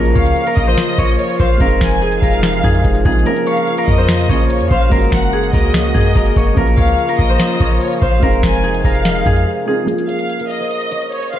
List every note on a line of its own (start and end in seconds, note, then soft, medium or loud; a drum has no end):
0.00 0.15 A#1 loud
0.00 1.56 C#3 medium
0.00 1.56 F3 medium
0.00 1.59 F3 medium
0.00 1.56 A#3 medium
0.00 1.57 C#4 medium
0.00 1.58 F4 medium
0.00 1.59 F4 medium
0.00 1.60 G#4 medium
0.00 0.46 A#4 loud
0.00 1.59 A#4 medium
0.00 0.15 C#5 medium
0.05 closed hi-hat medium
0.15 0.35 C#2 loud
0.15 0.73 C#5 medium
0.15 0.54 F5 medium
0.15 kick medium
0.15 closed hi-hat medium
0.26 closed hi-hat medium
0.36 closed hi-hat medium
0.47 1.60 A#4 medium
0.47 closed hi-hat medium
0.57 0.77 A#1 loud
0.57 1.15 D#5 medium
0.57 kick loud
0.57 closed hi-hat medium
0.67 1.04 C5 medium
0.78 finger snap medium
0.78 snare loud
0.78 closed hi-hat medium
0.88 closed hi-hat medium
0.98 1.18 A#1 loud
0.98 1.46 C#5 medium
0.98 kick medium
0.98 closed hi-hat medium
1.09 closed hi-hat medium
1.19 1.39 C#5 medium
1.19 closed hi-hat medium
1.29 closed hi-hat medium
1.40 1.60 A#1 loud
1.40 3.38 C5 medium
1.40 1.59 F5 medium
1.40 kick loud
1.40 closed hi-hat medium
1.57 1.80 F1 loud
1.57 3.24 C3 medium
1.57 4.88 F3 medium
1.57 3.01 G#3 medium
1.57 3.24 G#3 medium
1.57 3.01 C4 medium
1.57 3.02 D#4 medium
1.57 3.24 D#4 medium
1.57 2.22 A#4 loud
1.57 kick loud
1.57 closed hi-hat medium
1.61 3.03 F4 medium
1.61 3.04 G#4 medium
1.71 closed hi-hat medium
1.81 2.21 F1 loud
1.81 2.20 G#5 medium
1.81 finger snap medium
1.81 kick medium
1.81 snare loud
1.81 closed hi-hat medium
1.91 closed hi-hat medium
2.02 2.64 G#4 medium
2.02 closed hi-hat medium
2.12 closed hi-hat medium
2.22 2.62 F1 loud
2.22 3.26 A#4 medium
2.22 2.81 F5 medium
2.22 kick loud
2.22 closed hi-hat soft
2.22 open hi-hat medium
2.33 closed hi-hat medium
2.43 finger snap medium
2.43 snare loud
2.43 closed hi-hat medium
2.53 closed hi-hat medium
2.64 2.84 F2 loud
2.64 3.05 G#4 medium
2.64 kick loud
2.64 closed hi-hat medium
2.74 closed hi-hat medium
2.84 3.04 F1 loud
2.84 kick medium
2.84 closed hi-hat medium
2.95 closed hi-hat medium
3.04 3.25 A#1 loud
3.04 3.25 G#3 medium
3.04 3.26 C4 soft
3.04 3.26 D#4 soft
3.04 3.26 F4 soft
3.04 5.33 G#4 medium
3.04 3.27 A#4 medium
3.04 kick loud
3.04 closed hi-hat medium
3.12 closed hi-hat medium
3.19 4.26 F3 medium
3.19 closed hi-hat medium
3.24 6.54 C#3 medium
3.24 4.26 A#3 medium
3.24 8.18 A#3 medium
3.24 4.27 C#4 medium
3.24 4.90 F4 medium
3.24 4.28 F4 medium
3.24 3.78 A#4 medium
3.24 closed hi-hat medium
3.29 4.29 A#4 medium
3.36 closed hi-hat medium
3.47 4.04 C#5 medium
3.47 3.86 F5 medium
3.47 closed hi-hat medium
3.57 closed hi-hat medium
3.67 closed hi-hat medium
3.78 4.91 A#4 medium
3.78 closed hi-hat medium
3.88 4.28 F2 loud
3.88 4.46 D#5 medium
3.88 kick loud
3.88 closed hi-hat medium
3.98 4.35 C5 medium
4.09 finger snap medium
4.09 snare loud
4.09 closed hi-hat medium
4.19 closed hi-hat medium
4.28 4.62 A#1 loud
4.28 4.91 F3 medium
4.28 4.89 A#3 soft
4.28 4.91 C#4 medium
4.28 4.92 F4 medium
4.28 4.92 G#4 medium
4.28 4.77 C#5 medium
4.28 kick loud
4.28 closed hi-hat medium
4.40 closed hi-hat medium
4.50 4.70 C#5 medium
4.50 closed hi-hat medium
4.60 4.70 F2 loud
4.60 closed hi-hat medium
4.71 4.91 A#1 loud
4.71 6.43 C5 medium
4.71 4.90 F5 medium
4.71 kick loud
4.71 closed hi-hat medium
4.89 5.11 F#1 loud
4.89 6.53 G#3 medium
4.89 6.55 G#3 medium
4.89 6.53 A#3 medium
4.89 6.54 C#4 medium
4.89 6.55 F#4 medium
4.89 5.53 A#4 loud
4.89 kick loud
4.89 closed hi-hat medium
4.93 6.55 F#4 medium
4.93 6.55 G#4 medium
5.02 closed hi-hat medium
5.12 5.52 F#1 loud
5.12 5.51 F#5 medium
5.12 finger snap medium
5.12 kick loud
5.12 snare loud
5.12 closed hi-hat medium
5.22 closed hi-hat medium
5.33 5.94 G#4 medium
5.33 closed hi-hat medium
5.43 closed hi-hat medium
5.53 5.93 C#2 loud
5.53 6.15 A#4 medium
5.53 6.53 D#5 medium
5.53 kick medium
5.53 open hi-hat medium
5.74 finger snap medium
5.74 snare loud
5.74 closed hi-hat medium
5.85 closed hi-hat medium
5.94 6.15 F#2 loud
5.94 8.22 G#4 medium
5.94 kick loud
5.94 closed hi-hat medium
6.05 closed hi-hat medium
6.16 6.35 F#1 loud
6.16 6.57 A#4 medium
6.16 kick loud
6.16 closed hi-hat medium
6.26 closed hi-hat medium
6.36 6.56 F#1 loud
6.36 6.77 C#5 medium
6.36 kick loud
6.36 closed hi-hat medium
6.54 6.77 A#1 loud
6.54 8.21 C#3 medium
6.54 8.18 F3 medium
6.54 9.85 F3 medium
6.54 8.19 A#3 medium
6.54 8.19 C#4 medium
6.54 8.21 F4 medium
6.54 7.09 A#4 loud
6.54 kick loud
6.54 closed hi-hat medium
6.59 8.20 F4 medium
6.59 8.21 A#4 medium
6.67 closed hi-hat medium
6.77 6.97 C#2 loud
6.77 7.35 C#5 medium
6.77 7.16 F5 loud
6.77 kick medium
6.77 closed hi-hat medium
6.88 closed hi-hat medium
6.98 closed hi-hat medium
7.09 8.22 A#4 medium
7.09 closed hi-hat medium
7.19 7.39 A#1 loud
7.19 7.77 D#5 medium
7.19 kick loud
7.19 closed hi-hat medium
7.29 7.67 C5 medium
7.40 finger snap medium
7.40 snare loud
7.40 closed hi-hat medium
7.50 closed hi-hat medium
7.60 7.80 A#1 loud
7.60 8.08 C#5 medium
7.60 kick loud
7.60 closed hi-hat medium
7.71 closed hi-hat soft
7.81 8.01 C#5 medium
7.81 closed hi-hat medium
7.91 closed hi-hat soft
8.02 8.22 A#1 loud
8.02 10.00 C5 medium
8.02 8.21 F5 medium
8.02 kick loud
8.02 closed hi-hat medium
8.19 8.42 F1 loud
8.19 9.86 C3 medium
8.19 9.63 G#3 medium
8.19 9.86 G#3 medium
8.19 9.64 C4 medium
8.19 9.64 D#4 medium
8.19 9.86 D#4 medium
8.19 8.84 A#4 loud
8.19 kick loud
8.19 closed hi-hat medium
8.24 9.65 F4 medium
8.24 9.66 G#4 medium
8.33 closed hi-hat medium
8.43 8.83 F1 loud
8.43 8.82 G#5 medium
8.43 finger snap medium
8.43 kick medium
8.43 snare loud
8.43 closed hi-hat medium
8.54 closed hi-hat medium
8.64 9.26 G#4 medium
8.64 closed hi-hat medium
8.74 closed hi-hat medium
8.84 9.24 F1 loud
8.84 9.88 A#4 medium
8.84 9.43 F5 medium
8.84 kick loud
8.84 closed hi-hat soft
8.84 open hi-hat medium
8.95 closed hi-hat medium
9.05 finger snap medium
9.05 snare loud
9.05 closed hi-hat medium
9.16 closed hi-hat medium
9.26 9.46 F2 loud
9.26 9.67 G#4 medium
9.26 kick medium
9.26 closed hi-hat medium
9.36 closed hi-hat soft
9.66 9.87 G#3 medium
9.66 9.88 C4 soft
9.66 9.88 D#4 soft
9.66 9.88 F4 soft
9.66 11.39 G#4 medium
9.66 9.89 A#4 medium
9.84 11.39 F3 medium
9.84 11.39 A#3 medium
9.84 11.39 C#4 medium
9.84 10.40 A#4 medium
9.84 closed hi-hat medium
9.90 11.39 F4 medium
9.98 closed hi-hat medium
10.09 10.66 C#5 medium
10.09 10.48 F5 medium
10.09 closed hi-hat medium
10.19 closed hi-hat medium
10.29 closed hi-hat medium
10.40 11.39 A#4 medium
10.40 closed hi-hat medium
10.50 11.08 D#5 medium
10.50 closed hi-hat medium
10.60 10.97 C5 medium
10.71 closed hi-hat medium
10.81 closed hi-hat medium
10.91 11.39 C#5 medium
10.91 closed hi-hat medium
11.02 closed hi-hat soft
11.12 11.32 C#5 medium
11.12 closed hi-hat medium
11.23 closed hi-hat soft
11.33 11.39 C5 medium
11.33 11.39 F5 medium
11.33 closed hi-hat medium